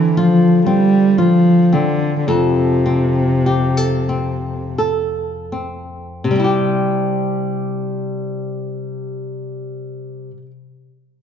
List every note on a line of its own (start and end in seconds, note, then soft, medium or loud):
0.00 2.26 D3 medium
0.00 0.19 E3 medium
0.00 0.66 C4 soft
0.00 0.17 F4 medium
0.17 0.66 F3 medium
0.17 1.18 F4 medium
0.66 1.19 G3 medium
0.66 1.72 C4 soft
1.17 1.75 F3 medium
1.17 2.28 F4 soft
1.73 2.18 D3 medium
1.73 2.85 C4 soft
2.19 2.29 D3 soft
2.28 6.30 F2 medium
2.28 4.78 C3 medium
2.28 3.45 A4 soft
2.86 4.09 C4 soft
3.46 3.77 G4 soft
3.77 4.77 A4 soft
4.09 5.52 C4 soft
4.78 6.44 A4 soft
5.52 6.36 C4 soft
6.24 10.30 C3 medium
6.31 10.37 G3 soft
6.36 10.42 C4 medium
6.40 10.46 E4 medium
6.44 10.50 G4 medium